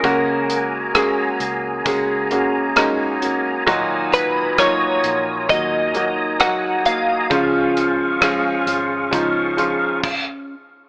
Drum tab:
CC |--------|--------|------x-|
HH |xxxxxxxx|xxxxxxxx|xxxxxx--|
SD |--r---r-|--r---r-|--r-----|
BD |o---o---|o---o---|o---o-o-|